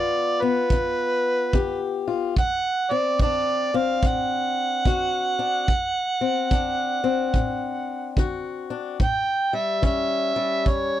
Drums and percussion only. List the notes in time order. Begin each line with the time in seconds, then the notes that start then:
0.70 kick
1.53 kick
2.37 kick
3.19 kick
4.03 kick
4.85 kick
5.68 kick
6.51 kick
7.34 kick
8.17 kick
9.00 kick
9.83 kick
10.66 kick